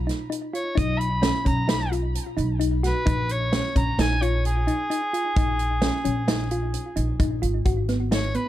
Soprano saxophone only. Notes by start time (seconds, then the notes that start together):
0.55 C#5
0.78 D#5
0.98 B5
1.47 A#5
1.70 B5
2.87 B4
3.32 C#5
3.77 A#5
4.01 G#5
4.22 C#5
4.46 G#4
8.14 C#5
8.36 B4